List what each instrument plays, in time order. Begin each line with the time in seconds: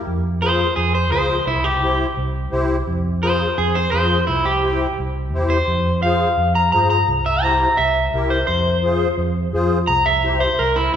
0.07 fingered electric bass F2
0.42 accordion F4 G#4 C5, clean electric guitar C5
0.76 fingered electric bass F2, clean electric guitar G#4
0.95 clean electric guitar C5
1.11 fingered electric bass C#2, accordion F4 G#4 C5, clean electric guitar C5
1.47 fingered electric bass C2, clean electric guitar E4
1.64 clean electric guitar G4
1.82 accordion E4 G4 C5
2.17 fingered electric bass C2
2.52 fingered electric bass C2, accordion E4 G4 C5
2.87 fingered electric bass F2
3.23 accordion F4 G#4 C5, clean electric guitar C5
3.58 fingered electric bass F2, clean electric guitar G#4
3.75 clean electric guitar C5
3.92 fingered electric bass F2, accordion F4 G#4 C5, clean electric guitar C5
4.27 fingered electric bass C2, clean electric guitar E4
4.45 clean electric guitar G4
4.63 accordion E4 G4 C5
4.99 fingered electric bass C2
5.33 fingered electric bass E2, accordion E4 G4 C5
5.50 clean electric guitar C5
5.68 fingered electric bass F2
6.03 accordion F4 G#4 C5, clean electric guitar F5
6.38 fingered electric bass F2
6.55 clean electric guitar A#5
6.72 fingered electric bass G2, accordion F4 G#4 C5, clean electric guitar A#5
6.90 clean electric guitar A#5
7.08 fingered electric bass C2
7.26 clean electric guitar E5
7.43 accordion E4 G4 C5, clean electric guitar A#5
7.77 fingered electric bass C2, clean electric guitar E5
8.14 fingered electric bass C2, accordion E4 G4 A#4
8.30 clean electric guitar C5
8.47 fingered electric bass F2, clean electric guitar C5
8.83 accordion F4 G#4 C5
9.18 fingered electric bass F2
9.53 fingered electric bass F2, accordion F4 G#4 C5
9.87 fingered electric bass C2, clean electric guitar A#5
10.06 clean electric guitar E5
10.24 accordion E4 G4 C5
10.40 clean electric guitar C5
10.59 fingered electric bass C2, clean electric guitar A#4
10.76 clean electric guitar E4